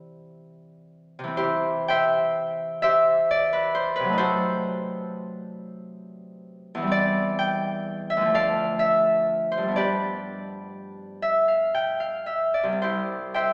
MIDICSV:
0, 0, Header, 1, 2, 480
1, 0, Start_track
1, 0, Key_signature, 0, "major"
1, 0, Tempo, 1083032
1, 610, Time_signature, 6, 3, 24, 8
1, 610, Tempo, 1003344
1, 1090, Tempo, 910470
1, 2050, Tempo, 875912
1, 3010, Tempo, 953895
1, 4930, Tempo, 990099
1, 5890, Tempo, 1069519
1, 6690, End_track
2, 0, Start_track
2, 0, Title_t, "Harp"
2, 0, Program_c, 0, 46
2, 0, Note_on_c, 0, 48, 54
2, 0, Note_on_c, 0, 52, 39
2, 0, Note_on_c, 0, 60, 38
2, 0, Note_on_c, 0, 67, 39
2, 0, Note_on_c, 0, 72, 71
2, 521, Note_off_c, 0, 48, 0
2, 526, Note_on_c, 0, 48, 60
2, 542, Note_off_c, 0, 52, 0
2, 547, Note_on_c, 0, 52, 51
2, 560, Note_off_c, 0, 60, 0
2, 565, Note_on_c, 0, 60, 52
2, 601, Note_off_c, 0, 72, 0
2, 603, Note_off_c, 0, 67, 0
2, 607, Note_on_c, 0, 67, 72
2, 607, Note_on_c, 0, 72, 95
2, 611, Note_on_c, 0, 64, 72
2, 853, Note_on_c, 0, 79, 111
2, 854, Note_off_c, 0, 72, 0
2, 858, Note_on_c, 0, 72, 85
2, 860, Note_on_c, 0, 76, 82
2, 1316, Note_off_c, 0, 76, 0
2, 1323, Note_on_c, 0, 76, 115
2, 1324, Note_off_c, 0, 72, 0
2, 1325, Note_off_c, 0, 67, 0
2, 1330, Note_on_c, 0, 67, 78
2, 1331, Note_on_c, 0, 72, 86
2, 1579, Note_on_c, 0, 74, 111
2, 1695, Note_on_c, 0, 71, 96
2, 1781, Note_off_c, 0, 74, 0
2, 1804, Note_off_c, 0, 72, 0
2, 1810, Note_on_c, 0, 72, 101
2, 1897, Note_off_c, 0, 71, 0
2, 1922, Note_on_c, 0, 71, 91
2, 1937, Note_off_c, 0, 48, 0
2, 1944, Note_on_c, 0, 48, 66
2, 1967, Note_on_c, 0, 54, 60
2, 1991, Note_on_c, 0, 57, 57
2, 2010, Note_on_c, 0, 63, 65
2, 2011, Note_off_c, 0, 72, 0
2, 2030, Note_off_c, 0, 52, 0
2, 2038, Note_on_c, 0, 72, 101
2, 2043, Note_on_c, 0, 66, 82
2, 2044, Note_on_c, 0, 69, 74
2, 2061, Note_off_c, 0, 76, 0
2, 2065, Note_off_c, 0, 67, 0
2, 2065, Note_off_c, 0, 79, 0
2, 2069, Note_off_c, 0, 64, 0
2, 2126, Note_off_c, 0, 71, 0
2, 2584, Note_off_c, 0, 60, 0
2, 3410, Note_on_c, 0, 40, 69
2, 3425, Note_on_c, 0, 52, 53
2, 3448, Note_on_c, 0, 55, 60
2, 3462, Note_off_c, 0, 48, 0
2, 3473, Note_off_c, 0, 54, 0
2, 3473, Note_on_c, 0, 60, 59
2, 3485, Note_off_c, 0, 57, 0
2, 3494, Note_off_c, 0, 63, 0
2, 3495, Note_on_c, 0, 74, 109
2, 3510, Note_off_c, 0, 66, 0
2, 3510, Note_off_c, 0, 69, 0
2, 3732, Note_on_c, 0, 79, 109
2, 4079, Note_off_c, 0, 72, 0
2, 4090, Note_on_c, 0, 76, 92
2, 4124, Note_on_c, 0, 38, 62
2, 4145, Note_on_c, 0, 53, 58
2, 4168, Note_on_c, 0, 57, 54
2, 4185, Note_off_c, 0, 40, 0
2, 4188, Note_on_c, 0, 62, 56
2, 4193, Note_off_c, 0, 52, 0
2, 4205, Note_off_c, 0, 55, 0
2, 4210, Note_off_c, 0, 74, 0
2, 4213, Note_on_c, 0, 69, 76
2, 4216, Note_on_c, 0, 74, 75
2, 4216, Note_on_c, 0, 77, 102
2, 4217, Note_off_c, 0, 60, 0
2, 4223, Note_off_c, 0, 79, 0
2, 4290, Note_off_c, 0, 76, 0
2, 4439, Note_on_c, 0, 76, 101
2, 4803, Note_on_c, 0, 72, 73
2, 4833, Note_on_c, 0, 43, 52
2, 4857, Note_on_c, 0, 55, 39
2, 4885, Note_on_c, 0, 59, 42
2, 4897, Note_off_c, 0, 62, 0
2, 4903, Note_on_c, 0, 62, 41
2, 4907, Note_off_c, 0, 38, 0
2, 4918, Note_off_c, 0, 53, 0
2, 4919, Note_off_c, 0, 74, 0
2, 4925, Note_on_c, 0, 74, 82
2, 4929, Note_off_c, 0, 57, 0
2, 4931, Note_on_c, 0, 67, 64
2, 4933, Note_on_c, 0, 71, 60
2, 4951, Note_off_c, 0, 69, 0
2, 4951, Note_off_c, 0, 77, 0
2, 5012, Note_off_c, 0, 72, 0
2, 5059, Note_off_c, 0, 76, 0
2, 5636, Note_on_c, 0, 76, 86
2, 5760, Note_on_c, 0, 77, 62
2, 5846, Note_off_c, 0, 76, 0
2, 5888, Note_on_c, 0, 79, 84
2, 5967, Note_off_c, 0, 77, 0
2, 6003, Note_on_c, 0, 77, 67
2, 6090, Note_off_c, 0, 79, 0
2, 6121, Note_on_c, 0, 76, 66
2, 6212, Note_off_c, 0, 77, 0
2, 6240, Note_off_c, 0, 74, 0
2, 6245, Note_on_c, 0, 74, 64
2, 6287, Note_on_c, 0, 36, 52
2, 6304, Note_off_c, 0, 55, 0
2, 6310, Note_on_c, 0, 55, 40
2, 6328, Note_on_c, 0, 60, 42
2, 6333, Note_off_c, 0, 76, 0
2, 6350, Note_off_c, 0, 43, 0
2, 6370, Note_on_c, 0, 72, 73
2, 6371, Note_off_c, 0, 67, 0
2, 6373, Note_off_c, 0, 59, 0
2, 6376, Note_on_c, 0, 64, 57
2, 6377, Note_on_c, 0, 67, 60
2, 6381, Note_off_c, 0, 62, 0
2, 6395, Note_off_c, 0, 71, 0
2, 6456, Note_off_c, 0, 74, 0
2, 6606, Note_on_c, 0, 79, 82
2, 6607, Note_off_c, 0, 72, 0
2, 6609, Note_on_c, 0, 76, 62
2, 6612, Note_on_c, 0, 72, 62
2, 6690, Note_off_c, 0, 36, 0
2, 6690, Note_off_c, 0, 55, 0
2, 6690, Note_off_c, 0, 60, 0
2, 6690, Note_off_c, 0, 64, 0
2, 6690, Note_off_c, 0, 67, 0
2, 6690, Note_off_c, 0, 72, 0
2, 6690, Note_off_c, 0, 76, 0
2, 6690, Note_off_c, 0, 79, 0
2, 6690, End_track
0, 0, End_of_file